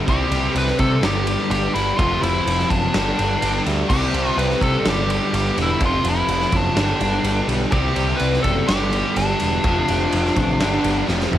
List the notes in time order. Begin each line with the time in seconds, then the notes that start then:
0.07 C2 C3 G3 C4 G4, kick, ride
0.31 C2, ride
0.55 C2 B4, ride
0.67 snare
0.79 C3 G3 C4 A4, kick, ride
1.02 G1 G2 D3 G3 G4, snare, ride
1.27 G4, ride
1.50 G1 G4, ride
1.73 G1 G2 D3 G3 E4, ride
1.97 F1 F2 C3 F3 F4, kick, ride
2.22 F1 E4, ride
2.46 F1, ride
2.59 snare
2.70 F#1 F2 C3 F3 D4, kick, ride
2.94 G1 G2 D3 G3, snare, ride
3.19 G1, ride
3.42 G1, ride
3.66 D2 G2 D3 G3, ride
3.87 C2 C3 G4, kick, crash
3.91 C3 G3 C4
4.14 C2, ride
4.37 C2 B4, ride
4.50 snare
4.61 C3 G3 C4 A4, kick, ride
4.85 G1 G2 D3 G3 G4, snare, ride
5.10 G4, ride
5.33 G1 G4, ride
5.57 E1 G2 D3 G3, ride
5.62 E4
5.81 F1 F2 C3 F3, kick, ride
5.85 F4
6.04 F1, ride
6.09 E4
6.28 F1, ride
6.41 snare
6.52 F#1 F2 C3 F3, kick, ride
6.56 D4
6.75 G1 G2 D3 G3, snare, ride
7.01 G1, ride
7.23 G1, ride
7.48 B1 G2 D3 G3, ride
7.71 C2 C3 G3 C4 G4, kick, ride
7.95 C2, ride
8.16 C2 B4, ride
8.33 snare
8.42 F#1 G3 C4 A4, kick, ride
8.47 C3
8.67 G1 G2 D3 G3 G4, snare, ride
8.93 ride
9.16 G1 D4, ride
9.40 E1 G2 D3 G3, ride
9.64 F1 F2 C3 F3, kick, ride
9.88 F1, ride
10.12 F1, ride
10.26 snare
10.36 A1 F2 C3 F3, kick, ride
10.60 G1 G2 D3 G3, snare, ride
10.84 G1, ride
11.08 F1 F2 C3 F3, snare
11.20 snare
11.31 F1, mid tom